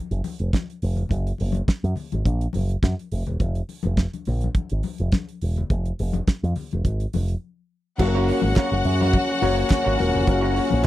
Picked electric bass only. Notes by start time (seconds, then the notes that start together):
0.11 F#1
0.40 F1
0.83 F1
1.11 F#1
1.41 F#1
1.68 muted picked electric bass stroke
1.84 F#2
2.13 G#1
2.26 A#1
2.55 F#1
2.83 F#2
3.12 F1
3.27 E1
3.40 F1
3.85 F1
4.27 A#1
4.71 G#1
5.00 F1
5.42 E1
5.70 F1
6.00 F1
6.28 muted picked electric bass stroke
6.43 F2
6.73 F1
6.85 G#1
7.14 F1
8.00 F#1
8.43 G#1
8.72 F#1
8.85 F#2
9.42 F#1
9.86 G#1
10.00 E1
10.15 F1
10.28 F#1
10.73 A#1